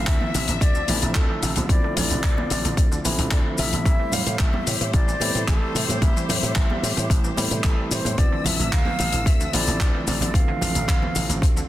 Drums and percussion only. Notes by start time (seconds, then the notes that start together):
0.07 kick, clap, closed hi-hat, shaker
0.20 high conga, low conga
0.34 open hi-hat, shaker
0.48 closed hi-hat, shaker
0.61 kick, closed hi-hat, shaker
0.75 shaker
0.88 open hi-hat, high conga, shaker
1.02 closed hi-hat, shaker
1.15 kick, clap, closed hi-hat, shaker
1.43 open hi-hat, shaker
1.56 closed hi-hat, high conga, low conga, shaker
1.69 kick, closed hi-hat, shaker
1.97 open hi-hat, low conga, shaker
2.10 closed hi-hat, shaker
2.23 kick, clap, closed hi-hat, shaker
2.37 high conga, low conga
2.50 open hi-hat, shaker
2.65 closed hi-hat, shaker
2.77 kick, closed hi-hat, shaker
2.92 shaker
3.05 open hi-hat, high conga, shaker
3.19 closed hi-hat, shaker
3.31 kick, clap, closed hi-hat, shaker
3.58 open hi-hat, shaker
3.72 closed hi-hat, high conga, low conga, shaker
3.85 kick, closed hi-hat, shaker
4.12 open hi-hat, low conga, shaker
4.26 closed hi-hat, shaker
4.39 kick, clap, closed hi-hat, shaker
4.53 high conga, low conga
4.67 open hi-hat, shaker
4.81 closed hi-hat, shaker
4.93 kick, closed hi-hat, shaker
5.08 shaker
5.20 open hi-hat, high conga, shaker
5.35 closed hi-hat, shaker
5.48 kick, clap, closed hi-hat, shaker
5.76 open hi-hat, shaker
5.89 closed hi-hat, high conga, low conga, shaker
6.02 kick, closed hi-hat, shaker
6.17 shaker
6.29 open hi-hat, low conga, shaker
6.44 closed hi-hat, shaker
6.55 kick, clap, closed hi-hat, shaker
6.70 high conga, low conga
6.84 open hi-hat, shaker
6.97 closed hi-hat, shaker
7.10 kick, closed hi-hat, shaker
7.24 shaker
7.37 open hi-hat, high conga, shaker
7.51 closed hi-hat, shaker
7.64 kick, clap, closed hi-hat, shaker
7.91 open hi-hat, shaker
8.05 closed hi-hat, high conga, low conga, shaker
8.18 kick, closed hi-hat, shaker
8.44 open hi-hat, low conga, shaker
8.60 closed hi-hat, shaker
8.72 kick, clap, closed hi-hat, shaker
8.85 high conga, low conga
8.99 open hi-hat, shaker
9.12 closed hi-hat, shaker
9.26 kick, closed hi-hat, shaker
9.40 shaker
9.53 open hi-hat, high conga, shaker
9.67 closed hi-hat, shaker
9.80 kick, clap, closed hi-hat, shaker
10.07 open hi-hat, shaker
10.21 closed hi-hat, high conga, low conga, shaker
10.34 kick, closed hi-hat, shaker
10.61 open hi-hat, low conga, shaker
10.75 closed hi-hat, shaker
10.88 kick, clap, closed hi-hat, shaker
11.02 high conga, low conga
11.15 open hi-hat, shaker
11.30 closed hi-hat, shaker
11.42 kick, closed hi-hat, shaker
11.57 shaker